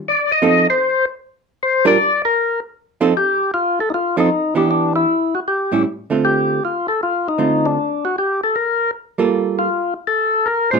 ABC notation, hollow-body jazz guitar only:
X:1
M:4/4
L:1/8
Q:"Swing" 1/4=155
K:Fmix
V:1 name="Hollow-body jazz guitar"
z2 [F,CEA] z4 z | z [G,DFB] z4 z [F,CEA] | z4 z [F,CEA] z [=E,=B,DG]- | [=E,=B,DG]2 z3 [A,,G,^C=E] z [D,A,=CF]- |
[D,A,CF]2 z4 [D,A,CF]2 | z6 z [G,B,FA]- | [G,B,FA]2 z4 z [B,,_A,_DF] |]